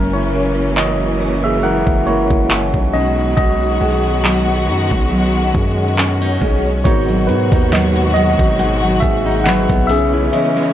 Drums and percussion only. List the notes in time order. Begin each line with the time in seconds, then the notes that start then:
0.77 clap
1.87 kick
2.30 kick
2.50 clap
2.74 kick
3.37 kick
4.25 clap
4.91 kick
5.55 kick
5.98 clap
6.42 kick
6.85 kick, closed hi-hat
7.09 closed hi-hat
7.29 closed hi-hat
7.52 kick, closed hi-hat
7.72 snare, closed hi-hat
7.96 closed hi-hat
8.16 closed hi-hat
8.39 kick, closed hi-hat
8.59 closed hi-hat
8.83 closed hi-hat
9.03 kick, closed hi-hat
9.46 snare, closed hi-hat
9.69 kick, closed hi-hat
9.89 open hi-hat
10.33 closed hi-hat
10.57 closed hi-hat